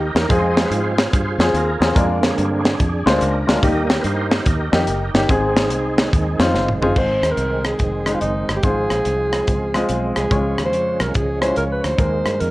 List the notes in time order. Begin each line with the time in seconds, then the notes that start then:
Already playing: D#2 D#3 D#4 G4 A#4
0.15 E2 A#3 D#4 A#4, snare, closed hi-hat
0.28 F2 F3 G#3 C4 F4 G#4 C5 D#5, kick, closed hi-hat
0.57 snare, closed hi-hat
0.65 B4
0.70 G#2 F4 G#4 C5, closed hi-hat
0.98 snare, closed hi-hat
1.12 G2 F4 G#4 C5, kick, closed hi-hat
1.38 F2 C4 F4 G#4, snare, closed hi-hat
1.49 C5
1.54 D#2 F4 A#4, closed hi-hat
1.80 E2 C4 F4 G#4, snare, closed hi-hat
1.95 F2 G#3 A#3 D4 F4 G#4 A#4, kick, closed hi-hat
2.22 D3 A#3 C4 D4 G#4, snare, closed hi-hat
2.38 G2, closed hi-hat
2.65 snare, closed hi-hat
2.80 F2, kick, closed hi-hat
3.06 D2 G#3 A#3 C4 F4 C5, snare, closed hi-hat
3.11 D4
3.16 A4
3.21 C#2 D4 A#4, closed hi-hat
3.47 D2 G#3 A#3 D4 F4 A#4, snare, closed hi-hat
3.62 D#2 D#3 G3 A#3 D#4 G4 A#4 D#5, kick, closed hi-hat
3.90 snare, closed hi-hat
3.99 B4
4.04 G2 D#4 G4 C5, closed hi-hat
4.31 snare, closed hi-hat
4.40 C5
4.46 D#2 D#4 G4 A#4, kick, closed hi-hat
4.72 F2 D#3 G3 A#3 D#4 G4, snare, closed hi-hat
4.87 F#1, closed hi-hat
5.14 G1 A#3 D#4 G4 A#4, snare, closed hi-hat
5.29 G#1 G#2 C4 D#4 G#4, kick, closed hi-hat
5.57 snare, closed hi-hat
5.70 C2, closed hi-hat
5.97 D#3 G#3 C4, snare, closed hi-hat
6.13 D#2, kick, closed hi-hat
6.39 F2 C4 D#4 F4, snare, closed hi-hat
6.54 F#1, snare
6.68 mid tom
6.81 G1 C4 D#4 F4 G#4, floor tom
6.96 G#1 G#2 D#3 G#3 C4 D#4 C5, kick, crash
7.22 D#2, cross-stick, closed hi-hat
7.32 A#4
7.37 C2, closed hi-hat
7.65 G#4, cross-stick, closed hi-hat
7.79 F1, kick, closed hi-hat
8.06 G#3 C4 D#4 C5, cross-stick, closed hi-hat
8.14 F4
8.21 F#1 D#4, closed hi-hat
8.48 G1, cross-stick, closed hi-hat
8.56 G4
8.63 G#1 G#2 F3 G#3 C4 F4 G#4 C5, kick, closed hi-hat
8.90 A#1, cross-stick, closed hi-hat
9.05 C2, closed hi-hat
9.33 cross-stick, closed hi-hat
9.47 C#2, kick, closed hi-hat
9.74 G#3 C4 F4 D#5, cross-stick, closed hi-hat
9.89 B1, closed hi-hat
10.16 C2 G#4, cross-stick, closed hi-hat
10.31 C#2 C#3 G#3 C#4 F4 C#5, kick, closed hi-hat
10.58 D#2, cross-stick, closed hi-hat
10.65 C5
10.73 F2, closed hi-hat
11.00 C2 A#4, cross-stick, closed hi-hat
11.14 C#2 G#4, kick, closed hi-hat
11.41 G#3 C#4 E4 C5 C#5, cross-stick, closed hi-hat
11.47 F4
11.56 C#2 A#4, closed hi-hat
11.72 B4
11.84 D2 C5, cross-stick, closed hi-hat
11.97 D#2 D#3 G#3 A#3 D#4 A#4, kick, closed hi-hat
12.26 G2, cross-stick, closed hi-hat
12.40 F2 A#4, closed hi-hat